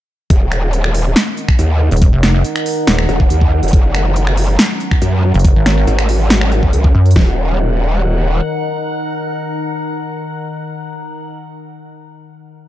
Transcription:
0.30 D#1 D#3 D#4 A#4 F#5, kick, closed hi-hat
0.52 finger snap, closed hi-hat
0.73 closed hi-hat
0.84 finger snap
0.95 open hi-hat
1.16 snare, closed hi-hat
1.37 closed hi-hat
1.49 finger snap, kick
1.59 D#2, closed hi-hat
1.91 D#1, closed hi-hat
1.97 closed hi-hat
2.02 kick, closed hi-hat
2.13 F1
2.23 finger snap, snare, closed hi-hat
2.45 closed hi-hat
2.56 finger snap, closed hi-hat
2.66 open hi-hat
2.87 D#1, snare, closed hi-hat
2.99 finger snap
3.09 D#1, closed hi-hat
3.20 kick
3.30 D#2, closed hi-hat
3.41 kick
3.63 F1, closed hi-hat
3.68 closed hi-hat
3.73 F#1 F#3 C#4, kick, closed hi-hat
3.95 finger snap, closed hi-hat
4.16 closed hi-hat
4.27 finger snap
4.37 open hi-hat
4.59 snare, closed hi-hat
4.80 closed hi-hat
4.91 finger snap, kick
5.02 F#2, closed hi-hat
5.34 F#1, closed hi-hat
5.39 closed hi-hat
5.45 kick, closed hi-hat
5.56 G#1
5.66 finger snap, snare, closed hi-hat
5.87 G#1, closed hi-hat
5.99 finger snap, closed hi-hat
6.09 open hi-hat
6.30 snare, closed hi-hat
6.41 finger snap
6.52 closed hi-hat
6.63 kick
6.73 C#2, closed hi-hat
6.84 kick
6.95 F#2
7.06 closed hi-hat
7.11 closed hi-hat
7.16 D#1 D#3 D#4 A#4 F#5, kick, snare

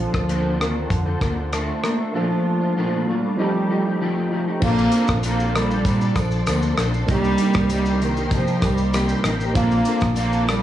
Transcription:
Already playing: C4 D4 F4 A4 C5
0.00 F3
0.13 D2 D4 A4 C5, kick, cross-stick
0.28 A#3 D4 A4 C5, closed hi-hat
0.60 D#3 A#3 D4 A4 C5, cross-stick, closed hi-hat
0.74 D4 A4 C5
0.90 F2 D3, kick, closed hi-hat
1.06 D4 A4 C5
1.20 D2 D3 A#3 D4 A4 C5, kick, cross-stick, closed hi-hat
1.36 D4 A4 C5
1.52 A3 D4 A4 C5, cross-stick, closed hi-hat
1.83 A#3 D4 A4 C5, cross-stick, closed hi-hat
1.98 D4 A4 C5
2.12 A#2 F3 A3 A#3 D4 F4
2.17 A4
2.29 A3 D4 F4
2.61 A3 D4 F4
2.76 A#2 F3 A3 D4 F4
3.07 A#2 G3 A3 D4 F4
3.22 A3 D4 F4
3.37 F3 A3 C4 D#4 G4
3.42 A4
3.53 A3 D#4 G4
3.68 F3 A3 D#4 G4
3.85 A3 D#4 G4
4.01 F3 A3 D#4 G4
4.31 F3 A3 D#4 G4
4.47 A3 D#4 G4
4.60 A#1 A#3 C4 D4 F4 A4 D5 C6, kick, crash, tambourine
4.64 A4 C5
4.78 shaker
4.92 A#3 D4 A4 C5, closed hi-hat, tambourine, shaker
5.07 A#1, kick, cross-stick, shaker
5.23 A#3 D4 A4 C5, closed hi-hat, tambourine, shaker
5.27 A#3
5.40 shaker
5.55 G3 A#3 D4 A4 C5, cross-stick, closed hi-hat, tambourine, shaker
5.70 D4 A4 C5, tambourine, shaker
5.85 A#2 A#3 D4 A4 C5, kick, closed hi-hat, tambourine, shaker
6.00 D4 A4 C5, shaker
6.16 A#1 F3, kick, cross-stick, closed hi-hat, tambourine, shaker
6.31 shaker
6.47 D2 A#3 D4 A4 C5, cross-stick, closed hi-hat, tambourine, shaker
6.62 shaker
6.77 A#1 A#3 D4 A4 C5, cross-stick, closed hi-hat, tambourine, shaker
6.93 D4 A4 C5, shaker
7.06 C2 C3 A#3 D4 D#4 G4 A#4 C5, kick, closed hi-hat, tambourine, shaker
7.11 G3 G4
7.24 shaker
7.38 C3 A#3 D#4 G4, closed hi-hat, tambourine, shaker
7.53 C2, kick, cross-stick, tambourine, shaker
7.70 C3 G3 A#3 D#4 G4, closed hi-hat, tambourine, shaker
7.86 shaker
8.01 C3 D#3 A#3 D#4 G4, closed hi-hat, tambourine, shaker
8.16 A#3 D#4 G4, shaker
8.31 C3 F3 A#3 D#4 G4, kick, closed hi-hat, tambourine, shaker
8.46 A#3 D#4 G4, tambourine, shaker
8.62 C2 G3, kick, cross-stick, closed hi-hat, tambourine, shaker
8.78 tambourine, shaker
8.93 C3 A#3 D#4 G4, cross-stick, closed hi-hat, tambourine, shaker
9.09 shaker
9.23 A1 C3 A#3 D#4 G4, cross-stick, closed hi-hat, tambourine, shaker
9.39 A#3 D#4 G4, shaker
9.53 A#1 A#3 C4 D4 F4 A4 C5 D5 A5, kick, closed hi-hat, tambourine, shaker
9.58 A4
9.71 shaker
9.85 A#3 D4 A4 C5, closed hi-hat, tambourine, shaker
10.01 A#1, kick, cross-stick, tambourine, shaker
10.16 A#3 D4 A4 C5, closed hi-hat, tambourine, shaker
10.33 shaker
10.46 G3 A#3 D4 A4 C5, cross-stick, closed hi-hat, tambourine, shaker

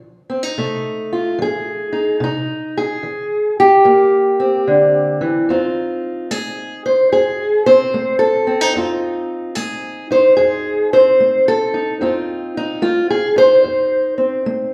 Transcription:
Already playing: F3
0.30 C4
0.43 D#4
0.58 C3 A3
1.13 F4
1.39 F3 G#4
1.93 D#4
2.20 C3 D#4
2.77 G#4
3.03 E3
3.60 G4
3.84 G2 A#3
4.40 C4
4.67 D3
5.21 E3
5.49 F2 C4 D#4 F4
6.31 A3 G#4
6.86 C5
7.12 F2 G#4
7.66 C4 C5
7.94 A3
8.19 A4
8.47 C4
8.61 D#4
8.76 F2 C4 D#4 F4
9.55 A3 G#4
10.11 D#4 C5
10.37 F2 G#4
10.93 C4 C5
11.20 A3
11.48 A4
11.74 D#4
12.01 F2 C4 D#4 F4
12.57 D#4
12.82 A3 F4
13.10 G#4
13.36 D#4 C5
13.64 F2
14.18 C4
14.46 A3

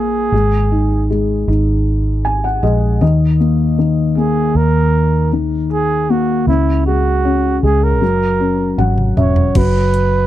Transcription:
Already playing: A#1 A#3 G#4
0.32 G#1 G#3
0.71 D#4
1.10 G#3
1.48 G#1 D#4
2.25 G#5
2.44 F#5
2.63 A#1 G#3 D#5
3.01 D#2 D#3 D#5
3.40 A#3
3.78 D#3
4.17 A#3 G#4
4.55 D#2 A#4
5.33 D#3
5.73 G#4
6.10 A#3 F#4
6.47 C#2 C#3 E4
6.86 G#3 F#4
7.25 C#4
7.63 C#2 G#3 G#4
7.84 A#4
8.01 F#1 F#3
8.40 C#4
8.78 G#1 F#3 F#5, high tom
8.98 mid tom
9.16 E1 C#4 C#5 E5, mid tom
9.36 floor tom
9.55 F#1 F#3 B4, kick, closed hi-hat, crash
9.94 closed hi-hat

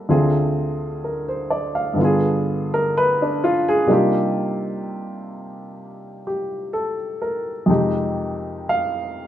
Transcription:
Already playing: G3 F4 A4
0.09 D2 D3 C4 F4 G#4
1.04 A#4
1.28 C5
1.50 D5
1.75 F5
1.94 G2 D3
1.98 B3 F4
2.04 G#4
2.74 A#4
2.97 B4
3.22 D4
3.44 F4
3.68 G#4
3.86 C3 G3 A#3 D4
3.91 D#4 F4 G4
6.27 G4
6.73 A4
7.22 A#4
7.66 F2 C3 G#3 D#4
7.71 G4
8.69 F5

